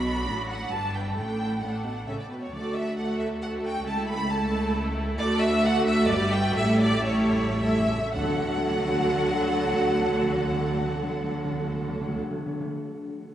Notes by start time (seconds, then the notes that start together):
Already playing: B1 B2 F#3 D4 F#4 B5
0.27 A1 A2
0.49 F#5
0.71 G1 G2 E3 D4 B4 A5
0.93 G5
1.16 A1 A2 A3 D4 A4 G5
1.61 A2 A3 D4 A4 F#5
1.84 B2
2.07 A1 C#3 A3 C#4 A4 E5
2.19 D5
2.30 B2 B4
2.41 C#5
2.53 D2 D3 A3 F#4 A4 D5
2.75 E5
2.98 A3 F#4 A4 F#5
3.20 E5
3.43 A3 F#4 A4 F#5
3.65 G5
3.87 C#2 A3 E4 A4 A5
4.10 B5
4.31 A3 E4 A4 A5
5.18 D2 A3 F#4 A4 D5
5.41 E5
5.63 A3 F#4 A4 F#5
5.87 E5
6.09 G1 G2 G3 G4 B4 D5
6.33 F#4 G5
6.57 A1 A2 G3 E4 A4 E5
6.81 D5
6.99 A2
7.06 A2 G3 E4 A4 C#5
7.16 A2
7.24 A2
7.32 A2
7.42 A2
7.50 A2
7.58 A2 G3 E4 A4 E5
7.69 A2
7.78 A2
7.87 A2
7.96 A2
8.13 D2 D3 F#3 F#4 A4 F#5
8.21 D3
8.28 D3
8.36 D3
8.43 D3
8.49 D3
8.57 D3
8.63 D3
8.71 D3
8.78 D3
8.85 D3
8.92 D3
9.00 D3
9.07 D3
9.14 D3
9.21 D3
9.28 D3
9.35 D3
9.42 D3
9.50 D3
9.58 D3
9.65 D3
9.73 D3
9.80 D3
9.87 D3
9.94 D3
10.01 D3
10.09 D3
10.16 D3
10.23 D3
10.30 D3
10.38 D3
10.44 D3
10.52 D3
10.59 D3
10.66 D3
10.74 D3
10.81 D3
10.88 D3
10.96 D3
11.03 D3
11.10 D3
11.17 D3
11.24 D3
11.31 D3
11.38 D3
11.45 D3
11.51 D3
11.58 D3
11.66 D3
11.73 D3
11.81 D3
11.88 D3
11.94 D3
12.01 D3
12.08 D3
12.16 D3
12.24 D3
12.31 D3
12.38 D3
12.46 D3
12.53 D3
12.60 D3